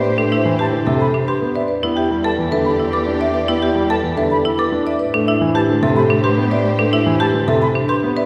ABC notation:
X:1
M:3/4
L:1/16
Q:1/4=109
K:Am
V:1 name="Flute"
z2 e z a z e b z c' z e | z2 e z a z e b z d' z e | z2 e z a z e b z d' z e | z2 e z a z e b z c' z e |
z2 e z a z e b z c' z e |]
V:2 name="Vibraphone"
B z e z B z A G z B z d | B z g z B z A G z B z e | B z g z B z A G z B z e | B z e z B z A G z B z d |
B z e z B z A G z B z d |]
V:3 name="String section"
[Gc]8- [Gc]3 z | [Gd]12- | [Gd]8- [Gd]3 z | [Gc]12- |
[Gc]8- [Gc]3 z |]
V:4 name="Marimba"
z D E z G z A z D G z B | z E G z A z B z E A z d | z E G z A z B z E A z d | z D E z G z A z D G z B |
z D E z G z A z D G z B |]
V:5 name="Grand piano" clef=bass
z A, z E, z D, C, z3 B, z | z B, z G, z E, D, z3 D z | z B, z G, z E, D, z3 D z | z A, z E, z D, C, z3 B, z |
z A, z E, z D, C, z3 B, z |]
V:6 name="Cello" clef=bass
A,,12 | E,,12- | E,,12 | A,,12- |
A,,12 |]